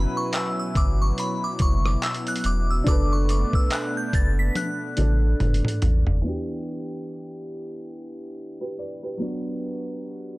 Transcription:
0.00 6.21 B2 medium
0.00 2.81 F#3 medium
0.00 2.83 F#3 medium
0.00 2.83 B3 medium
0.00 2.82 C#4 medium
0.00 2.83 E4 medium
0.00 2.84 E4 medium
0.00 2.85 B4 medium
0.00 0.17 B5 medium
0.17 0.33 C#6 medium
0.33 0.58 E6 medium
0.33 clap loud
0.33 closed hi-hat medium
0.59 0.77 E6 medium
0.75 1.12 G1 loud
0.75 1.01 D6 medium
0.75 kick medium
0.75 closed hi-hat medium
1.02 1.19 C#6 medium
1.18 1.44 B5 medium
1.18 closed hi-hat medium
1.44 1.61 D6 medium
1.59 1.97 F#1 medium
1.59 1.86 C#6 medium
1.59 kick loud
1.59 closed hi-hat medium
1.86 2.04 D6 medium
1.86 cross-stick medium
2.02 2.28 E6 medium
2.02 clap loud
2.02 closed hi-hat soft
2.14 closed hi-hat soft
2.27 2.46 F#6 loud
2.27 closed hi-hat medium
2.36 closed hi-hat medium
2.44 2.81 E1 loud
2.44 2.70 D6 medium
2.44 closed hi-hat medium
2.71 2.88 E6 medium
2.84 3.44 F#1 loud
2.84 6.21 A3 medium
2.84 6.21 B3 medium
2.84 4.93 D4 medium
2.84 6.21 D4 medium
2.84 4.94 A4 medium
2.84 kick loud
2.84 closed hi-hat loud
2.88 4.96 B4 medium
2.88 3.13 D6 loud
3.13 3.30 C#6 medium
3.29 3.55 D6 medium
3.29 closed hi-hat medium
3.53 3.71 E6 medium
3.53 kick loud
3.70 3.95 F#6 medium
3.70 clap loud
3.70 closed hi-hat medium
3.97 4.15 G6 medium
4.13 4.50 F#1 medium
4.13 4.37 A6 medium
4.13 kick medium
4.13 closed hi-hat medium
4.39 4.57 B6 medium
4.55 5.79 F#6 medium
4.55 closed hi-hat medium
4.55 high tom medium
4.97 5.34 A1 medium
4.97 6.24 D4 medium
4.97 6.25 A4 soft
4.97 6.26 D5 medium
4.97 closed hi-hat medium
4.97 mid tom medium
5.40 5.61 F#1 medium
5.40 closed hi-hat soft
5.40 mid tom medium
5.54 closed hi-hat medium
5.65 closed hi-hat medium
5.65 mid tom medium
5.82 6.04 A1 loud
5.82 closed hi-hat medium
5.82 floor tom loud
6.07 6.22 F#1 medium
6.07 floor tom loud
6.22 9.15 E3 medium
6.22 9.16 B3 medium
6.26 9.17 D4 medium
6.26 8.34 G4 medium
8.61 8.78 G4 soft
8.61 8.78 B4 medium
8.79 9.02 B4 medium
8.79 9.02 D5 medium
9.03 9.43 G4 medium
9.03 9.43 B4 medium
9.17 10.38 F#3 medium
9.17 10.38 B3 medium
9.22 10.38 D4 medium
9.22 10.38 F#4 medium

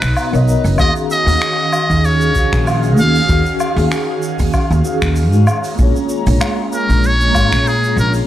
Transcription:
0.00 0.12 B1 medium
0.00 0.31 B3 medium
0.00 0.77 B3 medium
0.00 0.77 D#4 medium
0.00 0.80 F#4 medium
0.00 0.44 B4 loud
0.00 0.35 C#5 medium
0.00 0.36 D#5 medium
0.00 0.74 A#5 medium
0.00 finger snap medium
0.00 kick medium
0.00 open hi-hat medium
0.00 shaker medium
0.16 open hi-hat medium
0.16 low woodblock medium
0.16 shaker medium
0.31 0.53 B1 loud
0.31 0.75 B3 loud
0.31 0.75 A#4 medium
0.31 0.76 C#5 medium
0.31 shaker soft
0.36 0.77 D#5 loud
0.48 shaker medium
0.64 0.74 F#1 medium
0.64 open hi-hat medium
0.64 shaker medium
0.76 0.90 D#2 loud
0.76 2.30 D#3 medium
0.76 5.44 D#3 medium
0.76 2.31 C#4 medium
0.76 5.44 C#4 medium
0.76 5.44 F#4 medium
0.76 5.44 G#4 loud
0.76 5.44 F5 medium
0.76 kick loud
0.76 open hi-hat medium
0.76 low woodblock medium
0.76 shaker medium
0.80 2.32 F#4 medium
0.80 2.33 G#4 medium
0.80 0.94 D#5 loud
0.96 shaker soft
1.11 2.07 D#5 loud
1.11 shaker medium
1.26 1.36 D#2 loud
1.26 open hi-hat medium
1.26 shaker medium
1.42 finger snap medium
1.42 shaker medium
1.73 low woodblock medium
1.73 shaker medium
1.90 2.35 D#2 medium
1.90 kick medium
1.90 open hi-hat medium
1.90 shaker medium
2.04 2.67 C#5 loud
2.04 open hi-hat soft
2.04 shaker medium
2.21 shaker soft
2.31 3.24 D#3 medium
2.31 3.25 C#4 medium
2.31 3.25 F#4 medium
2.35 2.47 C#2 medium
2.35 3.27 G#4 medium
2.35 kick loud
2.35 shaker medium
2.39 3.28 F5 medium
2.53 2.97 A#1 medium
2.53 finger snap medium
2.53 kick loud
2.53 open hi-hat medium
2.53 shaker soft
2.67 open hi-hat medium
2.67 low woodblock medium
2.67 shaker medium
2.83 shaker soft
2.97 3.19 D#2 loud
2.97 3.57 F5 loud
2.97 shaker medium
3.15 open hi-hat medium
3.15 shaker soft
3.25 4.80 D#3 medium
3.25 4.81 C#4 medium
3.25 4.82 F#4 medium
3.25 shaker medium
3.29 3.41 D#2 loud
3.29 4.83 G#4 medium
3.29 4.84 F5 medium
3.29 kick loud
3.29 open hi-hat medium
3.46 shaker soft
3.60 low woodblock medium
3.60 shaker medium
3.76 3.86 D#2 loud
3.76 open hi-hat medium
3.76 shaker soft
3.91 finger snap medium
3.91 open hi-hat medium
3.91 shaker medium
4.22 shaker medium
4.39 4.49 D#2 medium
4.39 kick medium
4.39 open hi-hat medium
4.39 shaker soft
4.53 kick loud
4.53 open hi-hat medium
4.53 low woodblock medium
4.53 shaker medium
4.71 4.80 D#2 loud
4.71 shaker soft
4.84 5.45 D#3 medium
4.84 5.46 C#4 medium
4.84 5.46 F#4 medium
4.84 5.47 G#4 medium
4.84 5.47 F5 medium
4.84 shaker medium
5.02 5.32 D#2 medium
5.02 finger snap medium
5.02 kick medium
5.02 open hi-hat medium
5.02 shaker soft
5.16 open hi-hat medium
5.16 shaker medium
5.32 5.43 G#2 loud
5.32 shaker soft
5.47 8.26 G#3 medium
5.47 8.26 C#4 loud
5.47 8.27 A#5 medium
5.47 low woodblock medium
5.47 shaker medium
5.64 open hi-hat medium
5.64 shaker medium
5.75 5.90 A#1 medium
5.75 7.30 A#3 medium
5.75 7.31 F4 medium
5.75 kick loud
5.75 open hi-hat medium
5.75 shaker medium
5.80 7.33 G#4 medium
5.80 7.34 C#5 medium
5.96 shaker soft
6.09 shaker medium
6.26 6.37 A#1 loud
6.26 open hi-hat medium
6.26 shaker medium
6.41 finger snap medium
6.41 open hi-hat medium
6.41 low woodblock medium
6.41 shaker medium
6.73 7.08 A#4 loud
6.73 shaker medium
6.89 7.35 A#1 loud
6.89 kick medium
6.89 open hi-hat medium
6.89 shaker medium
7.03 7.69 C#5 loud
7.03 open hi-hat medium
7.03 shaker medium
7.21 shaker soft
7.32 7.47 G#1 medium
7.32 8.24 A#3 medium
7.32 8.25 F4 medium
7.32 kick loud
7.32 low woodblock medium
7.32 shaker medium
7.37 8.27 G#4 medium
7.37 8.27 C#5 medium
7.52 7.98 A#2 medium
7.52 finger snap medium
7.52 kick loud
7.52 open hi-hat medium
7.52 shaker soft
7.67 7.99 G#4 loud
7.67 open hi-hat medium
7.67 shaker medium
7.84 shaker soft
7.97 8.19 A#1 loud
7.97 8.13 A#4 medium
7.97 shaker medium
8.13 open hi-hat medium
8.13 shaker medium

